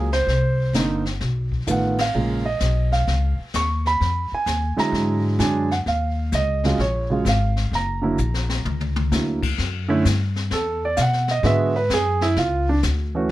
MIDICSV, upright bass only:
0, 0, Header, 1, 3, 480
1, 0, Start_track
1, 0, Tempo, 464396
1, 291, Time_signature, 4, 2, 24, 8
1, 13760, End_track
2, 0, Start_track
2, 0, Title_t, "Upright bass"
2, 0, Program_c, 0, 32
2, 0, Note_on_c, 0, 37, 75
2, 269, Note_off_c, 0, 37, 0
2, 275, Note_on_c, 0, 36, 72
2, 750, Note_off_c, 0, 36, 0
2, 758, Note_on_c, 0, 31, 70
2, 1232, Note_off_c, 0, 31, 0
2, 1250, Note_on_c, 0, 35, 71
2, 1718, Note_off_c, 0, 35, 0
2, 1730, Note_on_c, 0, 33, 70
2, 2199, Note_off_c, 0, 33, 0
2, 2218, Note_on_c, 0, 34, 72
2, 2683, Note_off_c, 0, 34, 0
2, 2694, Note_on_c, 0, 35, 76
2, 3161, Note_off_c, 0, 35, 0
2, 3178, Note_on_c, 0, 37, 69
2, 3478, Note_off_c, 0, 37, 0
2, 3659, Note_on_c, 0, 39, 80
2, 4125, Note_off_c, 0, 39, 0
2, 4140, Note_on_c, 0, 41, 71
2, 4440, Note_off_c, 0, 41, 0
2, 4612, Note_on_c, 0, 39, 82
2, 4916, Note_off_c, 0, 39, 0
2, 5086, Note_on_c, 0, 44, 78
2, 5559, Note_off_c, 0, 44, 0
2, 5570, Note_on_c, 0, 42, 84
2, 6041, Note_off_c, 0, 42, 0
2, 6058, Note_on_c, 0, 39, 74
2, 6526, Note_off_c, 0, 39, 0
2, 6534, Note_on_c, 0, 37, 78
2, 7004, Note_off_c, 0, 37, 0
2, 7009, Note_on_c, 0, 34, 76
2, 7481, Note_off_c, 0, 34, 0
2, 7493, Note_on_c, 0, 32, 78
2, 7963, Note_off_c, 0, 32, 0
2, 7974, Note_on_c, 0, 30, 71
2, 8444, Note_off_c, 0, 30, 0
2, 8461, Note_on_c, 0, 34, 81
2, 8927, Note_off_c, 0, 34, 0
2, 8942, Note_on_c, 0, 37, 75
2, 9408, Note_off_c, 0, 37, 0
2, 9423, Note_on_c, 0, 38, 80
2, 9888, Note_off_c, 0, 38, 0
2, 9908, Note_on_c, 0, 42, 77
2, 10370, Note_off_c, 0, 42, 0
2, 10388, Note_on_c, 0, 43, 86
2, 10850, Note_off_c, 0, 43, 0
2, 10864, Note_on_c, 0, 40, 73
2, 11328, Note_off_c, 0, 40, 0
2, 11340, Note_on_c, 0, 47, 88
2, 11805, Note_off_c, 0, 47, 0
2, 11815, Note_on_c, 0, 44, 84
2, 12282, Note_off_c, 0, 44, 0
2, 12297, Note_on_c, 0, 42, 86
2, 12763, Note_off_c, 0, 42, 0
2, 12782, Note_on_c, 0, 37, 86
2, 13245, Note_off_c, 0, 37, 0
2, 13264, Note_on_c, 0, 38, 85
2, 13725, Note_off_c, 0, 38, 0
2, 13760, End_track
3, 0, Start_track
3, 0, Title_t, "Muted upright bass strokes"
3, 3500, Note_on_c, 9, 29, 37
3, 3604, Note_off_c, 9, 29, 0
3, 4465, Note_on_c, 9, 29, 38
3, 4568, Note_off_c, 9, 29, 0
3, 4938, Note_on_c, 9, 29, 33
3, 5042, Note_off_c, 9, 29, 0
3, 13760, End_track
0, 0, End_of_file